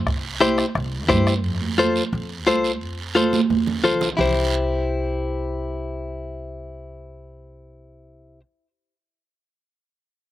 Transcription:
0.06 C2, bombo low, bombo rim, long guiro
0.41 E4 G4 C5, bombo rim, high conga, short guiro
0.58 bombo rim, short guiro
0.75 C2, bombo rim, long guiro
1.09 G2 E4 G4 C5, bombo low, bombo rim, high conga, short guiro
1.27 bombo rim, short guiro
1.44 F2, long guiro
1.61 high conga
1.78 F4 A4 C5, high conga, short guiro
1.96 short guiro
2.13 F2, long guiro
2.47 C2 F4 A4 C5, high conga, short guiro
2.64 short guiro
2.81 F2, long guiro
3.15 F4 A4 C5, high conga, short guiro
3.33 high conga, short guiro
3.50 F2, high conga, long guiro
3.67 low conga
3.84 C2 F4 A4 C5, low conga, short guiro
4.01 low conga, short guiro
4.17 C2 E4 G4 C5, low conga, long guiro

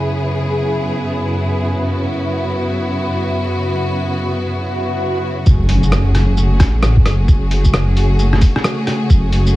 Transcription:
Already playing: F#2 C#3 B3 E4 G#4
1.83 F#4
4.55 swell
5.46 F#1 C#3 A3 F#4 G#4, kick, impact, shaker
5.69 open hi-hat
5.83 shaker
5.92 cross-stick, shaker
6.15 cross-stick, open hi-hat
6.37 shaker
6.60 A1, kick, cross-stick, open hi-hat, shaker
6.83 cross-stick, shaker
6.97 kick
7.05 F#1, cross-stick, open hi-hat
7.28 F#1, kick, shaker
7.51 open hi-hat
7.65 kick, shaker
7.74 cross-stick, shaker
7.97 open hi-hat
8.19 shaker
8.33 cross-stick
8.41 kick, open hi-hat, shaker
8.56 cross-stick
8.64 cross-stick, shaker
8.87 cross-stick, open hi-hat
9.10 F#1, kick, shaker
9.32 open hi-hat
9.47 shaker

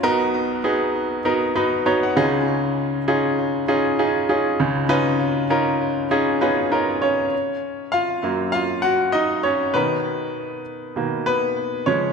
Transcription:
0.03 B1 B2 B3 D#4 F#4 A#4
0.64 B3 D#4 F#4 G#4
1.25 B3 D#4 F#4 A#4
1.55 B3 D#4 F#4 B4
1.86 B3 D#4 F#4 C#5 A#5
2.03 F#5
2.16 C#2 C#3 C#4 D#4 F4 G#4 D#5
3.08 C#4 D#4 F4 G#4
3.68 C#4 D#4 F4 G#4
3.99 C#4 D#4 F4 G#4
4.29 C#4 D#4 F4 G#4
4.60 C#2 C#3
4.89 C#4 D#4 F4 B4
5.50 C#4 D#4 F4 A#4
6.11 C#4 D#4 F4 G#4
6.41 B3 C#4 D#4 F4 G#4 B4
6.71 C#4 D#4 F4 A#4
7.02 C#4 C#5
7.92 F4 F5
8.23 F#2 F#3 A#3
8.52 F4 F5
8.82 F#4 F#5
9.12 D#4 D#5
9.43 C#4 C#5
9.74 B2 D#3 B3 A#4 B4
10.96 B2 D#3 A#3
11.26 B3 B4
11.86 C#3 F3 G#3 C#4 C#5

